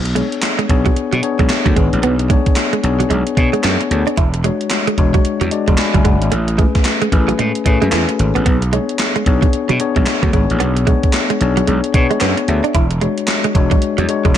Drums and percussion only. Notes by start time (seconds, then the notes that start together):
0.05 closed hi-hat
0.16 closed hi-hat
0.32 closed hi-hat
0.43 snare, clap, closed hi-hat
0.59 closed hi-hat
0.69 kick, closed hi-hat
0.86 kick, closed hi-hat
0.96 closed hi-hat
1.13 closed hi-hat
1.23 closed hi-hat
1.39 kick, closed hi-hat
1.50 snare, clap, closed hi-hat
1.66 kick, closed hi-hat
1.76 kick, closed hi-hat
1.93 closed hi-hat
2.03 closed hi-hat
2.19 closed hi-hat
2.30 kick, closed hi-hat
2.46 kick, closed hi-hat
2.56 snare, clap, closed hi-hat
2.73 closed hi-hat
2.84 closed hi-hat
3.00 closed hi-hat
3.11 closed hi-hat
3.27 closed hi-hat
3.37 kick, closed hi-hat
3.54 closed hi-hat
3.64 snare, clap, closed hi-hat
3.81 closed hi-hat
3.91 closed hi-hat
4.07 closed hi-hat
4.17 kick, closed hi-hat
4.34 closed hi-hat
4.44 closed hi-hat
4.61 closed hi-hat
4.71 snare, clap, closed hi-hat
4.87 closed hi-hat
4.98 kick, closed hi-hat
5.14 kick, closed hi-hat
5.25 closed hi-hat
5.41 closed hi-hat
5.51 closed hi-hat
5.68 kick, closed hi-hat
5.78 snare, clap, closed hi-hat
5.94 kick, closed hi-hat
6.05 kick, closed hi-hat
6.22 closed hi-hat
6.32 closed hi-hat
6.48 closed hi-hat
6.59 kick, closed hi-hat
6.75 kick, snare, closed hi-hat
6.85 snare, clap, closed hi-hat
7.02 closed hi-hat
7.12 kick, closed hi-hat
7.29 closed hi-hat
7.39 closed hi-hat
7.55 closed hi-hat
7.66 kick, closed hi-hat
7.82 closed hi-hat
7.92 snare, clap, closed hi-hat
8.09 closed hi-hat
8.19 closed hi-hat
8.36 closed hi-hat
8.46 kick, closed hi-hat
8.62 closed hi-hat
8.73 closed hi-hat
8.89 closed hi-hat
8.99 snare, clap, closed hi-hat
9.16 closed hi-hat
9.26 kick, closed hi-hat
9.42 kick, closed hi-hat
9.53 closed hi-hat
9.69 closed hi-hat
9.80 closed hi-hat
9.96 kick, closed hi-hat
10.07 snare, clap, closed hi-hat
10.23 kick, closed hi-hat
10.33 kick, closed hi-hat
10.50 closed hi-hat
10.60 closed hi-hat
10.77 closed hi-hat
10.87 kick, closed hi-hat
11.03 kick, closed hi-hat
11.13 snare, clap, closed hi-hat
11.30 closed hi-hat
11.41 closed hi-hat
11.57 closed hi-hat
11.67 closed hi-hat
11.84 closed hi-hat
11.94 kick, closed hi-hat
12.11 closed hi-hat
12.21 snare, clap, closed hi-hat
12.37 closed hi-hat
12.48 closed hi-hat
12.64 closed hi-hat
12.75 kick, closed hi-hat
12.91 closed hi-hat
13.01 closed hi-hat
13.18 closed hi-hat
13.28 snare, clap, closed hi-hat
13.44 closed hi-hat
13.55 kick, closed hi-hat
13.71 kick, closed hi-hat
13.82 closed hi-hat
13.98 closed hi-hat
14.09 closed hi-hat
14.25 kick, closed hi-hat